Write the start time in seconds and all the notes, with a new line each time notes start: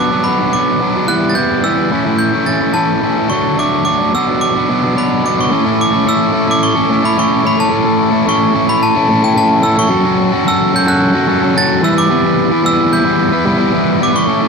Already playing: B2 F#3 B3 D4 D6
0.11 F#3 B3 D4
0.24 B2 F#3 B3 B5
0.28 D4
0.39 F#3 B3 D4
0.53 B2 F#3 B3 D4 D6
0.80 B2 F#3 B3 D4
0.94 F#3 B3 D4
1.07 E3 G3 B3 E4 F#6
1.29 A6
1.35 E3 G3 B3 E4 G6
1.64 E3 G3 B3 E4 E6
1.77 G3 B3 E4
1.91 A2 E3 A3 C#4 E4
2.05 A3 C#4 E4
2.19 G6
2.33 A3 C#4 E4
2.46 E3 A3 C#4 E4 A6
2.61 A3 C#4 E4
2.74 A2 E3 A3 C#4 E4 A5
3.02 E3 A3 C#4 E4
3.17 A3 C#4 E4
3.30 D3 F#3 A3 D4 C#6
3.57 D3 F#3 A3 D4 D6
3.85 D3 F#3 A3 D4 D6
3.99 F#3 A3 D4
4.14 B2 F#3 B3 D4 E6
4.27 F#3 B3 D4
4.41 D6
4.55 F#3 B3 D4
4.69 B2 F#3 B3 D4
4.82 F#3 B3 D4
4.96 B2 F#3 B3 D4 B5
5.23 B2 F#3 B3 D4 D6
5.37 F#3 B3 D4 C#6
5.50 A3 C#4 E4 A4
5.64 C#4 E4 A4
5.81 D6
5.92 C#4 E4 A4
6.05 A3 C#4 E4 A4
6.09 E6
6.32 A3 C#4 E4 A4
6.47 C#4 E4 A4
6.51 D6
6.63 C#6
6.75 C#4 E4 A4
6.89 A3 C#4 E4 A4
7.02 C#4 E4 A4 B5
7.17 A3 C#4 E4 A4 C#6
7.44 A3 C#4 E4 A4 B5
7.57 C#4 E4 A4 A5
7.70 A3 C#4 E4 A4
7.85 C#4 E4 A4
8.11 C#4 E4 A4
8.26 A3 C#4 E4 A4 C#6
8.53 A3 C#4 E4 A4
8.67 C#4 E4 A4 B5
8.83 A5
8.95 C#4 E4 A4
9.08 A3 C#4 E4 A4
9.22 C#4 E4 A4 G5
9.35 A3 C#4 E4 A4 A5
9.62 A3 C#4 E4 A4 E6
9.77 C#4 E4 A4 C#6
9.89 F#3 C#4 F#4 A4
10.04 C#4 F#4 A4
10.32 C#4 F#4 A4
10.45 F#3 C#4 F#4 A4 E6
10.72 F#3 C#4 F#4 A4 G6
10.86 C#4 F#4 A4 F#6
11.13 C#4 F#4 A4
11.26 F#3 C#4 F#4 A4
11.41 C#4 F#4 A4
11.54 F#3 C#4 F#4 A4 A6
11.82 E3 G3 B3 E4 B4 E6
11.95 B3 E4 B4 D6
12.09 E3 G3 B3 E4 B4
12.23 B3 E4 B4
12.50 B3 E4 B4
12.63 E3 G3 B3 E4 B4 E6
12.90 G3 B3 E4 B4 G6
13.04 B3 E4 B4
13.32 B3 E4 B4
13.45 G3 B3 E4 B4
13.58 B3 E4 B4
13.73 E3 G3 B3 E4 B4
14.00 G3 B3 E4 B4 D6
14.13 B3 E4 B4 C#6
14.27 A3 C#4 E4 A4
14.41 C#4 E4 A4